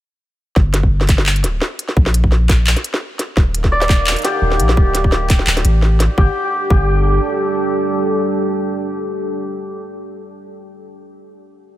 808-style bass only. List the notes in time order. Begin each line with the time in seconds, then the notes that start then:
0.56 G1
1.44 D1
1.97 A#1
3.37 D#1
4.42 D#1
4.59 A#1
4.77 D1
5.47 D1
5.65 A1
6.18 G1
6.70 G1